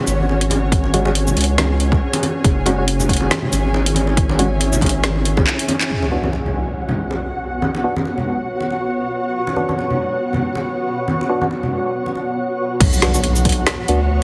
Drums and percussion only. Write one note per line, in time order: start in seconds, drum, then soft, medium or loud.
0.07 closed hi-hat soft
0.07 shaker medium
0.20 high conga medium
0.29 muted conga soft
0.41 closed hi-hat medium
0.50 closed hi-hat soft
0.50 muted conga medium
0.50 high conga medium
0.72 kick loud
0.72 closed hi-hat medium
0.84 muted conga medium
0.94 closed hi-hat soft
0.94 high conga medium
1.05 muted conga medium
1.15 closed hi-hat medium
1.27 high conga medium
1.27 low conga medium
1.27 shaker medium
1.37 closed hi-hat soft
1.37 muted conga soft
1.41 closed hi-hat medium
1.44 closed hi-hat medium
1.58 snare loud
1.58 closed hi-hat medium
1.58 muted conga medium
1.58 high conga medium
1.80 closed hi-hat soft
1.92 kick loud
1.92 muted conga soft
1.92 high conga medium
2.13 closed hi-hat medium
2.13 muted conga medium
2.23 closed hi-hat medium
2.23 high conga medium
2.44 kick loud
2.44 closed hi-hat medium
2.44 muted conga medium
2.66 closed hi-hat soft
2.66 muted conga medium
2.66 high conga medium
2.88 closed hi-hat medium
3.00 muted conga soft
3.00 high conga medium
3.00 low conga medium
3.00 shaker medium
3.09 kick medium
3.09 closed hi-hat soft
3.13 closed hi-hat medium
3.17 closed hi-hat medium
3.17 muted conga medium
3.30 snare loud
3.30 closed hi-hat medium
3.30 high conga medium
3.42 low conga medium
3.52 closed hi-hat soft
3.52 muted conga medium
3.52 shaker medium
3.65 high conga medium
3.74 muted conga medium
3.86 closed hi-hat medium
3.94 closed hi-hat medium
3.94 high conga medium
4.07 muted conga medium
4.17 kick loud
4.17 closed hi-hat medium
4.29 muted conga medium
4.39 closed hi-hat medium
4.39 high conga loud
4.60 closed hi-hat medium
4.60 muted conga soft
4.72 high conga medium
4.72 low conga medium
4.72 shaker medium
4.81 kick medium
4.81 closed hi-hat soft
4.81 muted conga medium
4.86 closed hi-hat medium
4.89 closed hi-hat medium
5.03 snare loud
5.03 closed hi-hat medium
5.03 high conga medium
5.16 muted conga medium
5.25 closed hi-hat medium
5.37 kick loud
5.37 muted conga medium
5.37 high conga medium
5.47 clap loud
5.59 closed hi-hat medium
5.68 closed hi-hat medium
5.68 muted conga medium
5.68 high conga medium
5.81 clap medium
5.81 closed hi-hat soft
6.03 muted conga medium
6.11 high conga medium
6.24 high conga medium
6.33 muted conga soft
6.46 low conga medium
6.89 high conga medium
6.89 low conga medium
7.11 muted conga medium
7.62 high conga medium
7.75 muted conga medium
7.96 high conga medium
8.05 muted conga soft
8.18 low conga medium
8.60 muted conga soft
8.70 muted conga soft
9.47 muted conga medium
9.56 high conga medium
9.69 high conga medium
9.79 muted conga soft
9.91 low conga medium
10.33 high conga medium
10.33 low conga medium
10.55 muted conga medium
11.08 high conga medium
11.21 muted conga medium
11.41 high conga medium
11.51 muted conga soft
11.63 low conga medium
12.06 muted conga soft
12.15 muted conga soft
12.80 kick loud
12.80 closed hi-hat medium
12.80 crash loud
12.93 shaker medium
13.02 snare medium
13.02 closed hi-hat medium
13.14 shaker medium
13.24 closed hi-hat medium
13.36 shaker medium
13.45 kick medium
13.45 closed hi-hat medium
13.49 closed hi-hat medium
13.52 closed hi-hat medium
13.67 snare loud
13.67 closed hi-hat medium
13.88 closed hi-hat medium